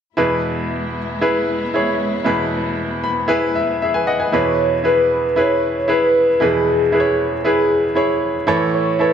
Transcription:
0.17 2.21 E2 medium
0.17 2.21 B2 soft
0.17 4.29 G#3 medium
0.17 4.29 B3 medium
0.17 4.29 E4 medium
0.17 0.97 E4 medium
0.17 0.98 G#4 medium
0.17 0.98 B4 medium
1.21 1.62 E4 medium
1.21 1.62 G#4 medium
1.21 1.62 B4 medium
1.74 2.14 E4 medium
1.74 2.14 G#4 medium
1.74 2.15 C#5 medium
2.24 4.29 E2 medium
2.24 4.29 B2 medium
2.24 3.05 E4 medium
2.24 3.06 G#4 medium
2.24 3.06 B4 medium
3.04 3.28 B5 medium
3.28 3.69 E4 medium
3.28 3.55 G#4 medium
3.28 3.55 B4 medium
3.28 3.53 G#5 medium
3.55 3.79 E5 medium
3.82 3.95 G#4 soft
3.82 4.06 E5 medium
3.94 4.07 B4 soft
3.94 4.07 G#5 medium
4.07 4.31 D#5 medium
4.07 4.19 F#5 medium
4.20 4.32 B4 soft
4.20 4.45 G#5 soft
4.32 6.37 E2 medium
4.32 6.37 B2 medium
4.32 4.73 E4 medium
4.32 4.73 G#4 medium
4.32 4.74 B4 medium
4.32 4.82 C#5 loud
4.84 5.24 E4 medium
4.84 5.25 G#4 medium
4.84 5.25 B4 medium
4.84 5.40 B4 medium
5.36 5.77 E4 medium
5.36 5.77 G#4 medium
5.36 5.77 B4 medium
5.36 5.89 C#5 medium
5.88 6.28 E4 medium
5.88 6.29 G#4 medium
5.88 6.29 B4 medium
5.88 6.43 B4 medium
6.40 8.44 E2 medium
6.40 8.44 B2 medium
6.40 6.80 E4 medium
6.40 6.81 G#4 medium
6.40 6.93 G#4 medium
6.40 6.81 B4 medium
6.92 7.32 E4 medium
6.92 7.33 G#4 medium
6.92 7.41 G#4 medium
6.92 7.00 B4 medium
7.00 7.36 C#5 medium
7.44 7.84 E4 medium
7.44 7.85 G#4 medium
7.44 8.19 G#4 medium
7.44 7.85 B4 medium
7.95 8.36 E4 medium
7.95 8.36 G#4 medium
7.95 8.36 C#5 medium
8.47 9.13 A2 medium
8.47 9.13 E3 medium
8.47 8.87 E4 medium
8.47 8.88 A4 medium
8.47 8.88 C#5 medium
8.75 8.98 C#5 loud
8.99 9.13 E4 medium
8.99 9.13 A4 medium
8.99 9.13 B4 loud
8.99 9.13 C#5 medium

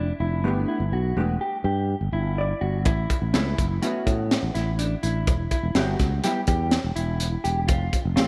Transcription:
0.00 0.10 F1 medium
0.00 0.12 D4 medium
0.20 0.44 F1 medium
0.20 0.51 E4 medium
0.44 0.64 G1 medium
0.44 0.78 A3 medium
0.44 0.78 B3 medium
0.44 0.78 D4 medium
0.44 0.78 G4 medium
0.68 0.84 E4 medium
0.80 0.90 G1 medium
0.92 1.12 B1 medium
0.92 1.24 F#4 medium
1.16 1.36 E1 medium
1.16 1.34 A3 medium
1.16 1.34 B3 medium
1.16 1.34 D4 medium
1.16 1.34 G4 medium
1.41 1.56 G4 medium
1.64 1.94 G2 medium
1.64 1.96 G4 medium
2.01 2.11 G1 medium
2.12 2.52 G1 medium
2.12 2.44 E4 medium
2.38 2.83 D5 medium
2.61 2.86 G1 medium
2.61 2.77 F#4 medium
2.85 3.05 A1 medium
2.85 3.17 E4 medium
2.85 kick loud
2.85 closed hi-hat medium
3.10 kick medium
3.10 closed hi-hat medium
3.22 3.32 A1 medium
3.34 3.53 C#2 medium
3.34 3.51 A3 medium
3.34 3.51 B3 medium
3.34 3.51 C#4 medium
3.34 3.65 E4 medium
3.34 3.51 E4 medium
3.34 snare loud
3.34 closed hi-hat medium
3.58 3.78 F#1 medium
3.58 kick medium
3.58 closed hi-hat medium
3.82 4.50 A3 medium
3.82 4.50 B3 medium
3.82 4.50 C#4 medium
3.82 4.50 E4 medium
3.82 4.14 F#4 medium
3.82 closed hi-hat medium
4.07 4.36 A2 medium
4.07 kick medium
4.07 closed hi-hat medium
4.31 snare loud
4.31 closed hi-hat medium
4.43 4.52 A1 medium
4.55 4.94 A1 medium
4.55 4.70 E4 medium
4.55 snare soft
4.55 closed hi-hat medium
4.79 4.94 D4 medium
4.79 closed hi-hat medium
5.03 5.27 A1 medium
5.03 5.34 E4 medium
5.03 closed hi-hat medium
5.27 5.47 E1 medium
5.27 kick loud
5.27 closed hi-hat medium
5.51 5.67 E4 medium
5.51 kick medium
5.51 closed hi-hat medium
5.63 5.73 E1 medium
5.75 5.95 G1 medium
5.75 5.93 G3 medium
5.75 5.93 B3 medium
5.75 5.93 E4 medium
5.75 6.07 F#4 medium
5.75 5.93 G4 medium
5.75 snare loud
5.75 closed hi-hat medium
5.99 6.19 C#2 medium
5.99 kick medium
5.99 snare soft
5.99 closed hi-hat medium
6.24 6.41 G3 medium
6.24 6.41 B3 medium
6.24 6.41 E4 medium
6.24 6.40 G4 medium
6.24 6.41 G4 medium
6.24 snare soft
6.24 closed hi-hat medium
6.47 6.77 E2 medium
6.47 6.79 G4 medium
6.47 kick medium
6.47 closed hi-hat medium
6.71 snare loud
6.71 closed hi-hat medium
6.84 6.94 E1 medium
6.96 7.35 E1 medium
6.96 7.27 E4 medium
6.96 closed hi-hat medium
7.20 closed hi-hat medium
7.44 7.69 E1 medium
7.44 7.60 G4 medium
7.44 closed hi-hat medium
7.68 7.88 F1 medium
7.68 7.99 F4 medium
7.68 kick loud
7.68 closed hi-hat medium
7.93 kick medium
7.93 closed hi-hat medium
8.05 8.15 F1 medium
8.16 8.28 A1 medium
8.16 8.28 A3 medium
8.16 8.28 C4 medium
8.16 8.28 F4 medium
8.16 8.28 G4 medium
8.16 snare loud
8.16 closed hi-hat medium

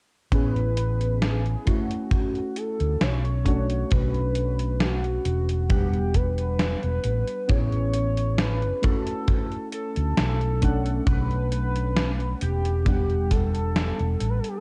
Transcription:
0.31 1.54 A1 medium
0.31 1.58 B3 medium
0.31 1.58 C#4 medium
0.31 1.59 E4 medium
0.31 1.59 G#4 medium
0.31 1.24 B4 loud
0.31 kick loud
0.31 closed hi-hat soft
0.56 closed hi-hat soft
0.77 closed hi-hat medium
1.01 closed hi-hat soft
1.22 1.69 G#4 medium
1.22 snare loud
1.22 closed hi-hat soft
1.46 closed hi-hat soft
1.65 3.37 A3 medium
1.65 3.38 C#4 medium
1.65 3.38 E4 medium
1.65 2.59 F#4 loud
1.65 3.38 F#4 medium
1.65 kick medium
1.65 closed hi-hat medium
1.91 closed hi-hat soft
2.11 kick loud
2.11 closed hi-hat soft
2.35 closed hi-hat soft
2.56 3.03 A4 medium
2.56 closed hi-hat medium
2.80 2.96 D2 medium
2.80 closed hi-hat soft
3.01 3.82 B1 medium
3.01 3.93 C#5 loud
3.01 snare loud
3.01 closed hi-hat soft
3.25 closed hi-hat soft
3.44 5.61 A3 medium
3.44 5.61 C#4 medium
3.44 5.62 D4 medium
3.44 5.62 F#4 medium
3.44 kick medium
3.44 closed hi-hat medium
3.70 closed hi-hat soft
3.91 5.17 B1 medium
3.91 4.83 B4 loud
3.91 kick loud
3.91 closed hi-hat soft
4.14 closed hi-hat soft
4.35 closed hi-hat medium
4.59 closed hi-hat soft
4.80 5.70 F#4 medium
4.80 snare loud
4.80 closed hi-hat soft
5.04 closed hi-hat soft
5.25 6.73 E1 medium
5.25 closed hi-hat medium
5.49 closed hi-hat soft
5.69 7.40 G3 medium
5.69 7.41 B3 medium
5.69 7.41 D4 medium
5.69 6.17 G4 medium
5.69 7.42 F#5 medium
5.69 kick loud
5.69 closed hi-hat medium
5.93 closed hi-hat soft
6.14 7.51 B4 loud
6.14 kick medium
6.14 closed hi-hat medium
6.38 closed hi-hat soft
6.59 snare loud
6.59 closed hi-hat soft
6.83 6.99 E1 medium
6.83 closed hi-hat soft
7.04 7.22 A1 medium
7.04 closed hi-hat medium
7.27 closed hi-hat soft
7.48 8.71 A1 medium
7.48 8.74 B3 medium
7.48 8.75 C#4 medium
7.48 8.75 E4 medium
7.48 8.76 G#4 medium
7.48 8.41 C#5 loud
7.48 kick loud
7.48 closed hi-hat soft
7.72 closed hi-hat soft
7.94 closed hi-hat medium
8.17 closed hi-hat soft
8.38 8.83 B4 loud
8.38 snare loud
8.38 closed hi-hat soft
8.62 closed hi-hat soft
8.82 10.53 A3 medium
8.82 10.54 C#4 medium
8.82 10.54 E4 medium
8.82 10.55 F#4 medium
8.82 9.69 A4 loud
8.82 kick loud
8.82 closed hi-hat medium
9.07 closed hi-hat soft
9.28 kick loud
9.28 closed hi-hat soft
9.52 closed hi-hat soft
9.72 11.03 A4 loud
9.72 closed hi-hat medium
9.96 10.12 D2 medium
9.96 closed hi-hat soft
10.17 10.99 B1 medium
10.17 snare loud
10.17 closed hi-hat medium
10.41 closed hi-hat soft
10.61 12.77 A3 medium
10.61 12.78 C#4 medium
10.61 12.78 D4 medium
10.61 12.79 F#5 medium
10.61 kick medium
10.61 closed hi-hat medium
10.86 closed hi-hat soft
11.07 12.33 B1 medium
11.07 12.38 B4 loud
11.07 kick loud
11.07 closed hi-hat soft
11.31 closed hi-hat soft
11.52 closed hi-hat medium
11.76 closed hi-hat soft
11.96 snare loud
11.96 closed hi-hat soft
12.20 closed hi-hat soft
12.41 13.90 E1 medium
12.41 13.33 G4 loud
12.41 closed hi-hat medium
12.65 closed hi-hat soft
12.85 14.56 G3 medium
12.85 14.57 B3 medium
12.85 14.57 D4 medium
12.85 14.58 F#5 medium
12.85 kick loud
12.85 closed hi-hat soft
13.10 closed hi-hat soft
13.31 14.31 A4 loud
13.31 kick medium
13.31 closed hi-hat medium
13.55 closed hi-hat soft
13.76 snare loud
13.76 closed hi-hat soft
13.99 14.15 E1 medium
13.99 closed hi-hat soft
14.20 14.38 A1 medium
14.20 closed hi-hat medium
14.29 14.41 B4 medium
14.39 14.50 A4 medium
14.44 closed hi-hat soft
14.48 14.59 G4 medium
14.57 14.60 A4 medium

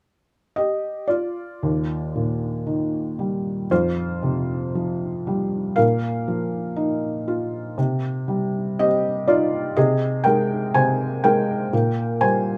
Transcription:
0.56 1.06 G4 medium
0.56 1.05 D#5 medium
1.08 3.67 F4 soft
1.08 3.66 D5 medium
1.63 3.67 D#2 soft
2.15 3.67 A#2 soft
2.67 3.67 D#3 soft
3.19 3.69 G3 soft
3.71 5.73 F2 medium
3.71 5.73 F4 medium
3.71 5.83 C5 medium
4.23 5.73 C3 soft
4.75 5.74 F3 soft
5.27 5.76 G3 soft
5.76 7.74 A#2 medium
5.76 8.74 A#4 medium
5.76 8.87 F5 medium
6.28 7.74 F3 soft
6.76 7.75 D#4 soft
7.28 7.77 F4 soft
7.78 9.73 C3 medium
8.28 9.72 G3 soft
8.79 9.74 C4 soft
8.79 9.25 G4 medium
8.79 9.30 D#5 medium
9.28 9.76 D#4 soft
9.28 9.73 F4 medium
9.28 9.73 D5 medium
9.77 10.73 C3 medium
9.77 10.22 G#4 medium
9.77 10.26 D#5 medium
10.24 11.23 G#3 soft
10.24 10.71 A#4 medium
10.24 10.75 G5 medium
10.74 11.70 C3 soft
10.74 11.21 C5 medium
10.74 11.20 G#5 medium
11.24 11.71 G#3 soft
11.24 12.17 A#4 medium
11.24 12.24 G5 medium
11.73 12.58 A#2 medium
12.21 12.58 G3 soft
12.21 12.58 C5 medium
12.21 12.58 G#5 medium

